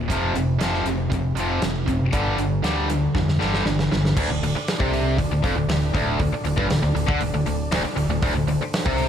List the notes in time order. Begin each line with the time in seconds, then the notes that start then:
0.10 F1 F2 C3 F3, kick, closed hi-hat
0.35 F1 F2 C3, closed hi-hat
0.60 F1 F2 C3 F3, snare, closed hi-hat
0.74 snare
0.85 F1 F2 C3, closed hi-hat
1.10 F1 F2 C3, kick, closed hi-hat
1.15 C3
1.35 F1 F2, closed hi-hat
1.39 F2 C3 F3
1.62 F1 F2 C3, snare, closed hi-hat
1.88 F#1 F2 C3, kick, closed hi-hat
2.13 G1 G2 D3 G3, kick, closed hi-hat
2.37 G1 G2 D3, closed hi-hat
2.62 D2 G2 D3 G3, snare, closed hi-hat
2.89 G2 D3, closed hi-hat
3.15 F2 G2 D3, kick, snare
3.28 snare
3.39 G1 G2 D3 G3, snare
3.54 snare
3.65 G1 G2 D3, snare
3.79 snare
3.91 G1 G2 D3, snare
4.05 snare
4.15 D1 D2 D4 A4 D5, kick, crash
4.30 D1 D2
4.42 D1 D2, open hi-hat
4.55 muted distorted electric guitar stroke, muted fingered electric bass stroke
4.68 snare, open hi-hat
4.80 C2 C3, kick
4.93 open hi-hat
5.18 D1 D2, kick, open hi-hat
5.30 D1 D2
5.43 F1 F2, kick, open hi-hat
5.55 D1 D2
5.68 D1 D2, snare, open hi-hat
5.94 D1 D2, kick, open hi-hat
6.19 D1 D2, kick, open hi-hat
6.32 muted fingered electric bass stroke, muted distorted electric guitar stroke
6.44 D1 D2, open hi-hat
6.57 G1 G2, kick
6.69 D1 D2, snare, open hi-hat
6.83 D1 D2
6.95 D1 D2, open hi-hat
7.07 D2 D3, kick
7.20 D1 D2, open hi-hat
7.34 D1 D2
7.46 D1 D2, open hi-hat
7.71 D1 D2, snare, open hi-hat
7.84 muted distorted electric guitar stroke, muted fingered electric bass stroke
7.96 D1 D2, open hi-hat
8.08 D1 D2
8.20 D1 D2 C5, kick, open hi-hat
8.35 D1 D2
8.47 D1 D2, open hi-hat
8.60 muted fingered electric bass stroke, muted distorted electric guitar stroke
8.73 snare, open hi-hat
8.85 C2 C3, kick
8.98 open hi-hat